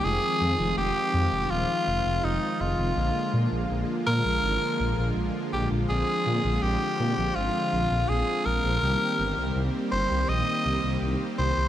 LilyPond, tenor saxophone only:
\new Staff \with { instrumentName = "Tenor saxophone" } { \time 4/4 \key bes \mixolydian \tempo 4 = 82 aes'4 g'4 f'4 ees'8 f'8~ | f'4 r8 bes'4. r8 g'8 | aes'4 g'4 f'4 aes'8 bes'8~ | bes'4 r8 c''8 ees''4 r8 c''8 | }